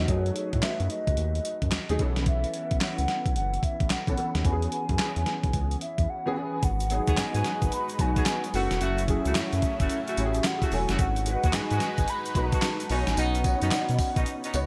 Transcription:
Already playing: F#3 A3 D#4 F#4 G#4 B4
0.08 F#2 F#3 A3 D#4 G#4 C#5, kick, closed hi-hat
0.26 closed hi-hat
0.36 closed hi-hat
0.53 A2, kick, closed hi-hat
0.63 F#3 A3 D#4 B4 E5, snare, clap, closed hi-hat
0.80 F#2, closed hi-hat
0.90 D#5, closed hi-hat
1.07 C#2, kick, closed hi-hat
1.17 D#2, closed hi-hat
1.35 closed hi-hat
1.45 closed hi-hat
1.62 F#2, kick, closed hi-hat
1.72 D#2, snare, clap, closed hi-hat
1.89 D#2 F#3 A3 D#4 G#4, closed hi-hat
1.99 B1 E3 B3 C#4 A4, kick, closed hi-hat
2.16 snare, closed hi-hat
2.26 E5, kick, closed hi-hat
2.44 closed hi-hat
2.54 closed hi-hat
2.71 B1, kick, closed hi-hat
2.81 E3 B3 C#4 E4 F#5, snare, clap, closed hi-hat
2.98 C#2, closed hi-hat
3.08 snare, closed hi-hat
3.26 B1, kick, closed hi-hat
3.36 F#1 F#5, closed hi-hat
3.54 closed hi-hat
3.63 E5, kick, closed hi-hat
3.80 A1, kick, closed hi-hat
3.90 B1 F#5, snare, clap, closed hi-hat
4.07 B1 E3 B3 C#4 A4, kick, closed hi-hat
4.17 E3 B3 C#4 A4, closed hi-hat
4.35 D#2, snare, closed hi-hat
4.45 E2 E3 B3 C#4 F#4 G#5, kick, closed hi-hat
4.52 G#4
4.62 closed hi-hat
4.72 closed hi-hat
4.89 F#2, kick, closed hi-hat
4.99 E3 B3 C#4 G#4, snare, clap, closed hi-hat
5.16 E2, closed hi-hat
5.26 snare, closed hi-hat
5.44 B1, kick, closed hi-hat
5.53 C#2, kick, closed hi-hat
5.71 closed hi-hat
5.81 E5, closed hi-hat
5.98 E2, kick, closed hi-hat
6.10 F#5
6.26 E3 B3 C#4 G#4
6.31 G5
6.36 E3 B3 C#4 G#4 G#5
6.63 G#1 G#3 D#4 F#4 B4 F#5, kick, closed hi-hat, shaker
6.80 closed hi-hat, shaker
6.90 F#3 B3 D#4 G#4, closed hi-hat, shaker
7.07 D#2 B3 F#4 G#4, kick, closed hi-hat, shaker
7.17 G#2 F#3 B3 D#4 G#4 G#5, snare, clap, closed hi-hat, shaker
7.35 G#2 B3 F#4 G#4, closed hi-hat, shaker
7.44 snare, closed hi-hat, shaker
7.62 G#1, kick, closed hi-hat, shaker
7.72 B5, closed hi-hat, shaker
7.89 closed hi-hat, shaker
7.99 B1 F#3 B3 D#4 F#4 G#5, kick, closed hi-hat, shaker
8.16 B3 F#4 G#4, kick, closed hi-hat, shaker
8.26 snare, clap, closed hi-hat, shaker
8.44 closed hi-hat, shaker
8.54 F#1 F#3 A3 C#4 E4 F#4 A4 F#5, open hi-hat, shaker
8.71 E1, snare, closed hi-hat, shaker
8.81 F#1 A3 E4 F#4 E5, closed hi-hat, shaker
8.98 closed hi-hat, shaker
9.08 F#3 C#4 E4 G#4, kick, closed hi-hat, shaker
9.25 C#2 A3 E4 F#4, closed hi-hat, shaker
9.35 F#2 F#3 C#4 E4 F#4, snare, clap, closed hi-hat, shaker
9.53 F#2, closed hi-hat, shaker
9.62 kick, closed hi-hat, shaker
9.80 F#1 A3 E4 F#4, kick, closed hi-hat, shaker
9.90 closed hi-hat, shaker
10.07 A3 E4 F#4, closed hi-hat, shaker
10.17 A1 F#3 C#4 E4 G4 E5, closed hi-hat, shaker
10.25 G#4
10.34 closed hi-hat, shaker
10.44 F#5, snare, clap, closed hi-hat, shaker
10.62 A3 E4 F#4, kick, closed hi-hat, shaker
10.72 E1 F#3 C#4 E4 A4 G#5, open hi-hat, shaker
10.89 F#1 A3 E4 F#4, snare, closed hi-hat, shaker
10.99 G#1 G#3 D#4 F#4 B4 F#5, kick, closed hi-hat, shaker
11.16 closed hi-hat, shaker
11.26 G#3 D#4 F#4 B4, closed hi-hat, shaker
11.43 D#2 G#3 B3 F#4, kick, closed hi-hat, shaker
11.53 G#2 G#3 D#4 F#4 B4 G#5, snare, clap, closed hi-hat, shaker
11.71 G#2 G#3 B3 F#4, closed hi-hat, shaker
11.80 snare, closed hi-hat, shaker
11.98 G#1, kick, closed hi-hat, shaker
12.08 B5, closed hi-hat, shaker
12.25 closed hi-hat, shaker
12.35 B1 G#3 D#4 F#4 B4 A5, kick, closed hi-hat, shaker
12.52 G#3 B3 F#4, kick, closed hi-hat, shaker
12.62 snare, clap, closed hi-hat, shaker
12.80 closed hi-hat, shaker
12.90 B1 B3 C#4 D#4 F#4 C#5 G#5, open hi-hat, shaker
13.07 A1, snare, closed hi-hat, shaker
13.17 B1 B3 C#4 D#4 F#5, closed hi-hat, tambourine, shaker
13.35 closed hi-hat, shaker
13.44 B3 D#4 F#4 C#5, kick, closed hi-hat, tambourine, shaker
13.62 F#2 B3 C#4 D#4, closed hi-hat, shaker
13.71 B2 B3 D#4 F#4 D5, snare, clap, closed hi-hat, tambourine, shaker
13.80 D#5
13.89 B2, closed hi-hat, shaker
13.99 kick, open hi-hat, tambourine, shaker
14.16 B1 B3 C#4 D#4, kick, closed hi-hat, shaker
14.26 closed hi-hat, shaker
14.43 B3 C#4 D#4, closed hi-hat, shaker
14.53 C#2 B3 D#4 F#4 C#5, closed hi-hat, tambourine, shaker

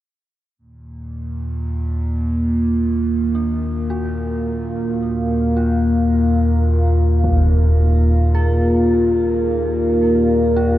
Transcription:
0.56 D#2 A#2 A#3
1.98 A#4
2.92 F5
3.35 D4
3.90 F#4
5.56 F4
7.24 impact
8.34 G#4
10.56 F4

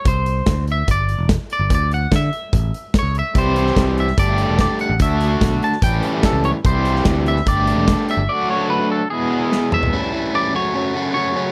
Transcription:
0.05 C2 C5, kick, closed hi-hat
0.26 closed hi-hat
0.46 D2, kick, snare, closed hi-hat
0.67 closed hi-hat
0.72 E5
0.88 G1 D5, kick, closed hi-hat
1.09 closed hi-hat
1.19 E1
1.29 kick, snare, closed hi-hat
1.50 D5, closed hi-hat
1.59 G1
1.70 D2, kick, closed hi-hat
1.75 D5
1.91 F#5, closed hi-hat
2.11 D3, kick, snare, closed hi-hat
2.16 E5
2.33 closed hi-hat
2.53 A1, kick, closed hi-hat
2.74 closed hi-hat
2.94 kick, snare, closed hi-hat
2.99 C#5
3.03 C#2
3.15 closed hi-hat
3.19 E5
3.34 C2 C3 E3 G3 C4 E4 G4, kick, closed hi-hat
3.38 C5
3.56 closed hi-hat
3.67 snare
3.76 C2, kick, snare, closed hi-hat
3.98 E5, closed hi-hat
4.07 snare
4.17 G1 G3 A3 D4 G4 D5, kick, closed hi-hat
4.38 closed hi-hat
4.49 E1
4.59 D5, kick, snare, closed hi-hat
4.79 F#5, closed hi-hat
4.90 A1
4.99 D2 D3 A3 D4 F#4 E5, kick, closed hi-hat
5.21 closed hi-hat
5.41 B1, kick, snare, closed hi-hat
5.62 A5, closed hi-hat
5.72 snare
5.81 A1 A2 E3 G3 A3 C#4 E4 G4 G5, kick, closed hi-hat
6.03 closed hi-hat
6.23 A4, kick, snare, closed hi-hat
6.33 C#2
6.44 C#5, closed hi-hat
6.63 C2 C3 E3 G3 C4 E4 G4 C5, kick, closed hi-hat
6.85 closed hi-hat
6.96 snare
7.05 D2, kick, snare, closed hi-hat
7.26 E5, closed hi-hat
7.36 snare
7.46 G1 G3 A3 D4 G4 D5, kick, closed hi-hat
7.67 closed hi-hat
7.76 E1
7.88 kick, snare, closed hi-hat
8.09 E5, closed hi-hat
8.17 G1
8.28 D3 F#3 A3 D4 F#4 D5
8.51 C#5
8.70 B4
8.92 A4
9.10 E2 B2 E3 G#3 B3 E4 G#4
9.52 snare
9.72 E5, mid tom
9.83 floor tom
9.93 A2 E3 G3 C#4 E4
10.13 A2 E3 G3 C#4 E4
10.34 A2 E3 G3 C#4 E4 D5
10.53 F#2 C#3 F#3 A3 C#4 F#4 C#5
10.74 F#2 C#3 F#3 A3 C#4 F#4
10.95 F#2 C#3 F#3 A3 C#4 F#4
11.14 F#2 C#3 F#3 A3 C#4 F#4 C#5
11.35 F#2 C#3 F#3 A3 C#4 F#4

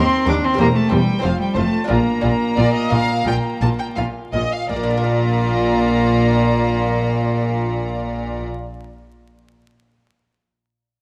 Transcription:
Already playing: D#2 A#3 C4 A#4 C6
0.26 D#2 D4 G4 A#4 D6
0.45 C4 C6
0.54 C4 G4 A#4 C5
0.58 E1 E2 A#3 G4 A#5
0.76 A3 A5
0.89 E1 E2 G3 G4 C5 G5
1.19 F3 C4 F4 C5
1.23 F1 F2 F5
1.40 G3 G5
1.54 F1 F2 A3 F4 C5 A5
1.84 D4 F4 A#4 D5
1.89 A#1 A#2 A#3 F4 A#5
2.21 A#1 A#2 F4 D5
2.57 A#1 A#2 F4 D5
2.74 D#5
2.90 A#1 A#2 F4 F5
3.24 A#1 A#2 F4 G5
3.61 A#1 A#2 F4 A5
3.79 G5
3.96 A#1 A#2 F4 F5
4.33 A#1 A#2 F4 D#5
4.53 F5
4.69 A#1 A#2 A#3 F4 D5 A#5
4.76 A#3
4.83 D4
4.90 F4
4.97 A#4
5.04 F5

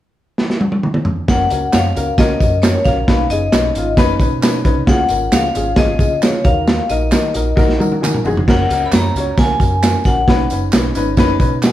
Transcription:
0.38 snare
0.50 snare
0.61 high tom
0.72 high tom
0.83 mid tom
0.94 mid tom
1.05 floor tom
1.28 F#1 C#4 F#4 A#4 F#5, kick, snare, closed hi-hat, tambourine
1.50 C#2 C#4 F#4 A#4, closed hi-hat, tambourine
1.73 F#2 C#4 F#4 C#5 F5, snare, clap, closed hi-hat, tambourine
1.95 C#2 C#4 F#4 A#4, closed hi-hat, tambourine
2.18 C#2 C#4 F#4 A#4 D#5, kick, snare, closed hi-hat, tambourine
2.40 F#2 C#4 F#4 A#4, kick, closed hi-hat, tambourine
2.62 C#4 F#4 A#4 C#5, snare, clap, closed hi-hat, tambourine
2.85 A#1 C#4 F#4 A#4 F5, kick, snare, closed hi-hat, tambourine
3.07 B1 C#4 D#4 B4, kick, snare, closed hi-hat, tambourine
3.30 F#1 C#4 D#4 G#4 D#5, closed hi-hat, tambourine
3.52 B1 C#4 D#4 B4, snare, clap, closed hi-hat, tambourine
3.75 G#1 C#4 D#4 F4, closed hi-hat, tambourine
3.97 F#1 C#4 D#4 B4, kick, snare, closed hi-hat, tambourine
4.20 B2 C#4 D#4 B4, kick, closed hi-hat, tambourine
4.41 C#4 D#4 B4, snare, clap, closed hi-hat, tambourine
4.64 C2 C#4 D#4 B4, kick, closed hi-hat, tambourine
4.86 C#2 C#4 F4 G#4 F#5, kick, snare, closed hi-hat
5.09 G#1 C#4 F4 A#4, closed hi-hat, tambourine
5.32 C#2 C#4 F4 G#4 F5, snare, clap, closed hi-hat, tambourine
5.54 G#1 C#4 F4 G#4, closed hi-hat, tambourine
5.75 G#1 C#4 F4 G#4 D#5, kick, snare, closed hi-hat, tambourine
5.98 C#3 C#4 F4 G#4, kick, closed hi-hat, tambourine
6.21 C#4 F4 G#4 C#5, snare, clap, closed hi-hat, tambourine
6.44 D#2 D#4 F#4 A#4 F5, kick, closed hi-hat
6.67 snare, closed hi-hat, tambourine
6.89 A#1 D#4 F#4 A#4 D#5, closed hi-hat, tambourine
7.11 D#3 D#4 F#4 A#4, snare, clap, closed hi-hat, tambourine
7.34 A#1 D#4 F#4 A#4, closed hi-hat, tambourine
7.56 A#1 D#4 F#4 A#4, kick, snare, tambourine
7.69 snare
7.79 D#3 D#4 F#4 A#4 A#5, high tom, tambourine
7.92 high tom
8.01 D#4 F#4 A#4 G#5, clap, mid tom, tambourine
8.14 mid tom
8.24 F1 D#4 F#4 G#4 F#5, floor tom, tambourine
8.37 floor tom
8.47 F#1 C#4 F#4 A#4 F#5, kick, snare, crash, tambourine
8.69 C#2 C#4 F#4 A#4, closed hi-hat, tambourine
8.86 B5
8.92 F#2 C#4 F#4 C#5 A#5, snare, clap, closed hi-hat, tambourine
9.14 C#2 C#4 F#4 C#5, closed hi-hat, tambourine
9.37 C#2 C#4 F#4 A#4 G#5, kick, snare, closed hi-hat, tambourine
9.60 F#2 C#4 F#4 A#4, kick, closed hi-hat, tambourine
9.83 C#4 F#4 A#4, snare, clap, closed hi-hat, tambourine
10.04 A#1 C#4 F#4 A#4 F#5, kick, snare, closed hi-hat, tambourine
10.27 B1 C#4 D#4 B4, kick, snare, closed hi-hat
10.50 F#1 C#4 D#4 B4, closed hi-hat, tambourine
10.72 B1 C#4 D#4 B4, snare, clap, closed hi-hat, tambourine
10.95 G#1 C#4 D#4 B4, closed hi-hat, tambourine
11.17 F#1 C#4 D#4 B4, kick, snare, closed hi-hat, tambourine
11.39 B2 C#4 D#4 B4, kick, closed hi-hat, tambourine
11.62 D#5 F#5 G#5, snare, clap, closed hi-hat, tambourine

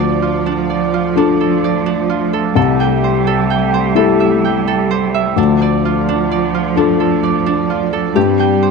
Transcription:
Already playing: D2 F3 A3 D4 F4 D5
0.00 D5
0.22 F4
0.46 D4
0.70 D5
0.94 F4
1.16 D4 F4 A4
1.41 A4
1.64 D5
1.86 D4
2.10 F4
2.33 A4
2.55 C2 G3 G4 A4 E5
2.80 G5
3.04 C5
3.27 A4
3.50 G5
3.74 C5
3.95 E4 G4 A4
4.20 E5
4.44 G5
4.68 A4
4.91 C5
5.14 E5
5.36 D2 F3 A3 D4 F4 D5
5.62 D5
5.85 F4
6.09 D4
6.31 D5
6.55 F4
6.76 D4 F4 A4
7.00 A4
7.23 D5
7.46 D4
7.70 F4
7.93 A4
8.15 G2 G3 C4 G4
8.39 G5
8.63 C5

